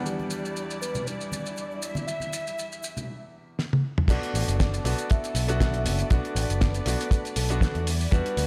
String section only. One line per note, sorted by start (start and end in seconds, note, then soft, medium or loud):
0.00 3.05 G3 medium
0.00 3.05 E4 medium
0.00 1.80 D5 medium
1.82 3.07 E5 medium
4.09 7.83 B3 medium
4.09 6.09 A4 medium
4.09 8.47 D5 medium
6.10 7.85 B4 medium
7.86 8.47 G3 medium
7.86 8.47 E4 medium